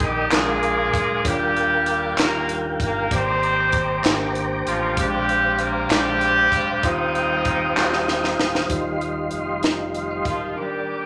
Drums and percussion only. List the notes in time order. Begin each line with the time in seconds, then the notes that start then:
0.00 kick
0.31 snare, clap, closed hi-hat
0.63 closed hi-hat
0.94 kick, closed hi-hat
1.25 kick, closed hi-hat
1.57 closed hi-hat
1.86 closed hi-hat
2.18 snare, clap, closed hi-hat
2.49 closed hi-hat
2.80 kick, closed hi-hat
3.11 kick, closed hi-hat
3.43 closed hi-hat
3.72 kick, closed hi-hat
4.04 snare, clap, closed hi-hat
4.35 closed hi-hat
4.67 closed hi-hat
4.97 kick, closed hi-hat
5.29 closed hi-hat
5.59 closed hi-hat
5.90 snare, clap, closed hi-hat
6.21 closed hi-hat
6.52 kick, closed hi-hat
6.83 kick, closed hi-hat
7.15 closed hi-hat
7.45 kick, closed hi-hat
7.77 snare, clap
7.93 snare
8.08 snare
8.24 snare
8.39 snare
8.55 snare
8.70 kick, closed hi-hat
9.01 closed hi-hat
9.31 closed hi-hat
9.63 snare, closed hi-hat
9.95 closed hi-hat
10.25 kick, closed hi-hat